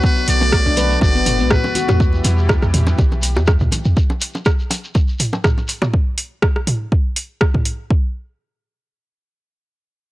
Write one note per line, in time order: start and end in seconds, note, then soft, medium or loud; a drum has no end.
0.00 1.98 D3 medium
0.00 1.96 F#3 medium
0.00 1.98 A3 medium
0.00 0.11 B3 medium
0.00 1.98 B3 medium
0.00 1.96 F#4 medium
0.00 kick loud
0.00 low bongo medium
0.00 shekere medium
0.05 0.27 B4 loud
0.16 muted conga soft
0.16 high conga medium
0.16 shekere soft
0.28 0.61 B1 loud
0.28 0.40 F#3 medium
0.28 0.98 D5 loud
0.28 open hi-hat medium
0.28 shekere medium
0.41 0.47 A3 medium
0.41 low bongo medium
0.41 shekere soft
0.52 kick loud
0.52 cross-stick loud
0.52 muted conga soft
0.52 shekere medium
0.66 0.97 B1 loud
0.66 0.77 D4 loud
0.66 low bongo medium
0.66 high conga medium
0.66 shekere soft
0.77 0.89 B4 loud
0.77 open hi-hat medium
0.77 high conga medium
0.77 low conga medium
0.77 shekere loud
0.91 muted conga medium
0.91 shekere soft
1.01 1.41 F#1 loud
1.01 1.14 F#4 medium
1.01 1.53 D5 loud
1.01 kick loud
1.01 low bongo medium
1.01 low conga medium
1.01 shekere medium
1.15 1.25 B3 loud
1.15 shekere soft
1.26 mid tom medium
1.26 open hi-hat medium
1.26 low bongo medium
1.26 muted conga soft
1.26 shekere loud
1.40 1.71 B1 loud
1.40 1.50 B3 loud
1.40 high conga medium
1.40 shekere soft
1.50 1.58 F#4 medium
1.50 2.00 B4 medium
1.50 kick loud
1.50 cross-stick loud
1.50 mid tom medium
1.50 shekere medium
1.64 low bongo medium
1.64 high conga medium
1.64 shekere soft
1.75 1.88 F#4 loud
1.75 open hi-hat medium
1.75 muted conga medium
1.75 low conga medium
1.75 shekere medium
1.88 2.20 E2 loud
1.88 2.00 F#4 medium
1.88 mid tom medium
1.88 high bongo loud
1.88 low bongo medium
1.88 high conga medium
1.88 shekere soft
2.00 3.95 B2 medium
2.00 3.95 E3 medium
2.00 3.95 G3 medium
2.00 3.95 E4 medium
2.00 3.95 G4 medium
2.00 kick loud
2.00 shekere soft
2.13 muted conga medium
2.13 shekere soft
2.24 2.57 E2 loud
2.24 open hi-hat medium
2.24 low bongo medium
2.24 shekere medium
2.38 shekere soft
2.49 kick loud
2.49 cross-stick loud
2.49 low bongo medium
2.49 muted conga soft
2.49 shekere medium
2.62 2.94 E2 loud
2.62 cross-stick medium
2.62 high conga medium
2.62 shekere soft
2.74 mid tom medium
2.74 open hi-hat medium
2.74 high conga medium
2.74 low conga loud
2.74 shekere medium
2.87 low bongo medium
2.87 muted conga medium
2.87 shekere soft
2.98 3.38 B1 loud
2.98 kick loud
2.98 high bongo medium
2.98 low conga medium
2.98 shekere soft
3.11 low bongo medium
3.11 shekere soft
3.22 open hi-hat medium
3.22 muted conga soft
3.22 shekere medium
3.35 3.68 E2 loud
3.35 high bongo loud
3.35 shekere soft
3.47 kick loud
3.47 cross-stick loud
3.47 low bongo medium
3.47 shekere medium
3.60 kick medium
3.60 mid tom medium
3.60 shekere soft
3.72 open hi-hat medium
3.72 low bongo medium
3.72 muted conga medium
3.72 low conga medium
3.72 shekere medium
3.84 3.94 E2 loud
3.84 shekere soft
3.97 kick loud
3.97 shekere soft
4.10 low bongo medium
4.10 shekere soft
4.21 open hi-hat medium
4.21 shekere medium
4.34 low bongo medium
4.34 shekere soft
4.45 kick loud
4.45 cross-stick loud
4.45 shekere soft
4.59 shekere soft
4.70 open hi-hat medium
4.70 low bongo medium
4.70 shekere medium
4.84 shekere soft
4.95 kick loud
4.95 low bongo medium
4.95 shekere medium
5.08 shekere soft
5.19 mid tom medium
5.19 open hi-hat medium
5.19 shekere medium
5.33 low bongo loud
5.33 shekere soft
5.44 kick loud
5.44 cross-stick loud
5.44 mid tom loud
5.44 shekere medium
5.57 low bongo medium
5.57 shekere soft
5.68 open hi-hat medium
5.68 shekere loud
5.82 mid tom medium
5.82 high bongo loud
5.82 shekere soft
5.94 kick loud
6.18 open hi-hat medium
6.42 kick loud
6.42 cross-stick loud
6.56 cross-stick medium
6.67 mid tom loud
6.67 open hi-hat medium
6.92 kick loud
7.16 open hi-hat medium
7.41 kick loud
7.41 cross-stick loud
7.54 kick medium
7.54 mid tom medium
7.65 open hi-hat medium
7.91 kick loud